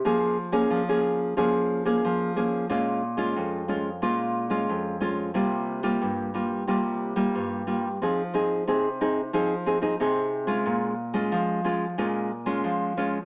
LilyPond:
\new Staff \with { instrumentName = "Nylon-string guitar" } { \time 4/4 \key des \lydian \tempo 4 = 90 << { <bes des' aes'>8 r16 <bes des' aes'>8 <bes des' aes'>8. <bes des' aes'>8. <bes des' aes'>8. <bes des' aes'>8 | <aes des' f'>8 r16 <aes des' f'>8. <aes des' f'>16 r16 <aes des' f'>8. <aes des' f'>8. <aes des' f'>8 | <g bes f'>8. <g bes f'>8. <g bes f'>8 <g bes f'>8. <g bes f'>8. <g bes f'>16 r16 | <c' ees' aes'>16 r16 <c' ees' aes'>8 <c' ees' aes'>16 r16 <c' ees' aes'>16 r16 <c' ees' aes'>16 r16 <c' ees' aes'>16 <c' ees' aes'>16 <c' ees' aes'>8. <aes des' f'>16~ |
<aes des' f'>8 r16 <aes des' f'>8. <aes des' f'>16 r16 <aes des' f'>8 r16 <aes des' f'>8. <aes des' f'>16 r16 | } \\ { f4 f4 f4 f4 | bes,4 f,4 bes,4 f,4 | c4 g,4 c4 g,4 | f4 c4 f4 c4 |
bes,4 f4 bes,4 f4 | } >> }